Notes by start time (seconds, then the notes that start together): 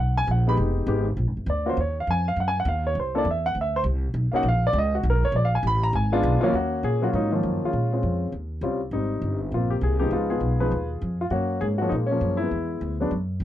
Already playing: B1
0.00 F#5
0.17 G#5
0.27 A#1 F#5
0.47 G#3 B3 D#4 G4 B5
0.57 F1
0.87 G#1 G#3 B3 D#4 G4
1.17 A#1
1.27 G#1
1.37 F#1
1.46 D2 D5
1.66 A#3 C#4 F4 F#4 C5
1.77 D#2 C#5
2.00 F5
2.07 F2 G#5
2.28 F5
2.36 F#2
2.40 F#5
2.48 G#5
2.60 F#5
2.65 D#2 F5
2.87 C#5
2.95 C2
3.00 C5
3.15 A#3 D4 E4 A4 D5
3.25 E2
3.31 E5
3.46 F#5
3.55 D2
3.61 E5
3.76 C5
3.84 C2
4.14 B1
4.33 A#3 C#4 D#4 F#4 F#5, muted upright bass stroke
4.43 A#1
4.48 F5
4.67 D5
4.73 C#2
4.78 D#5
4.95 F#4
5.03 B1
5.10 A#1 A#4
5.22 F#1 C#5
5.32 A#1
5.36 D5
5.45 F5
5.55 G#5
5.63 A1
5.67 B5
5.83 A#5
5.93 G#1 G#5
6.12 G#3 B3 D4 F4
6.23 B1
6.41 D#2 F#3 A#3 C#4 F4, muted upright bass stroke
6.53 D#2 A#3 C#4 F#4
6.83 A#2 G#4
7.02 F#3 A#3 C#4 F4 F#4
7.13 G#2 F#3 A#3 D#4
7.31 D#3 F3 F#3 A#3 C#4 F4
7.43 F#2
7.63 G#3 C#4 F4, muted upright bass stroke
7.73 A#2
7.92 G#3 C4 C#4 F4
8.03 F2
8.32 D#2
8.61 C2 G3 C4 C#4 F4
8.91 G#1 G3 C4 D#4
9.22 G1
9.52 A#1 A#3 C4 F4
9.70 G4
9.81 C2 G#4
10.00 F3 G#3 B3 D#4 G4
10.11 C#2 G#3 B3 F4
10.30 B3 F4 G#4
10.40 B1
10.60 F3 G#3 B3 D#4 F4 G#4 B4
10.71 D#2
11.01 F2
11.21 F4
11.30 F#2 A#3 C#4 F#4
11.61 G#2 G#4
11.78 F3 G#3 F#4
11.82 A#3 C#4
11.89 A#2 D#4
11.94 G#3 A#3
12.06 C#4
12.11 F3 A#3
12.21 F#2
12.37 E4
12.41 G#3 B3
12.51 E2
12.81 D2
13.00 F#3 G#3 B3 D4
13.11 F#2
13.40 B1